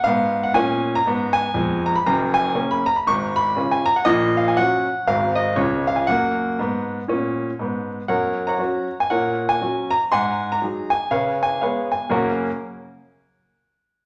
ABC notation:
X:1
M:4/4
L:1/16
Q:"Swing" 1/4=119
K:F#
V:1 name="Grand piano"
e3 f g3 a3 g4 a b | a2 g3 b a b c'2 b3 g a f | d2 e g f4 e2 d2 c2 e g | f12- f2 z2 |
[Acf]3 [cfa]4 g [Acf]3 g3 a2 | [fg^b]3 a3 g2 [=Bce]2 g2 [Bce]2 g2 | [F,,C,A,CFAf]2 z12 z2 |]
V:2 name="Grand piano" clef=bass
[G,,B,]4 [A,,C]4 [G,,B,]4 [E,,G,]4 | [F,,,F,,]4 [C,A,C]4 [G,,,G,,]4 [C,CE]4 | [A,,,A,,]4 [F,CF]4 [G,,,G,,G,^B,F]4 [C,,C,G,CE]4 | [F,,A,]4 [G,,B,]4 [A,,C]4 [G,,B,]4 |
F,,4 [F,CF]4 A,,4 [F,CF]4 | G,,4 [F,DG]4 C,4 [G,B,G]4 | z16 |]